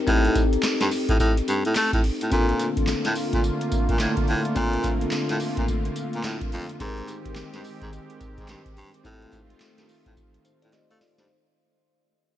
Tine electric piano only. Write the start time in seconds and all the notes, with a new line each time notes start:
0.07 C4 D#4 G4 A4
2.31 C4 D4 F4 A4
4.55 C4 D4 F4 A4
6.79 C4 D#4 G4 A#4
9.03 C4 D#4 G4 A4
10.45 D#4 C5
10.62 F4 D5
10.73 G4 D#5
10.91 A4 F5
11.01 F4 D5
11.19 D#4 C5